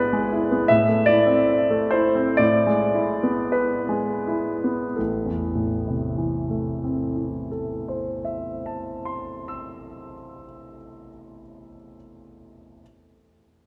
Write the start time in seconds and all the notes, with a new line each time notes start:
Already playing: A2 G#3 B3 E4 B4 D5
0.13 G#3
0.32 E4
0.52 B3
0.68 A2 E5
0.89 A3
1.06 E4 D5
1.27 C4
1.70 A3
1.91 E4 C5
2.15 C4
2.37 A2 D5
2.67 G#3
2.94 E4
3.23 B3
3.52 B4
3.89 G#3
4.27 E4
4.64 B3
4.96 A1 A4
5.26 E2
5.55 A2
5.87 C3
6.18 E3
6.50 A3
6.84 C4
7.16 E4
7.51 A4
7.88 C5
8.25 E5
8.66 A5
9.05 C6
9.48 E6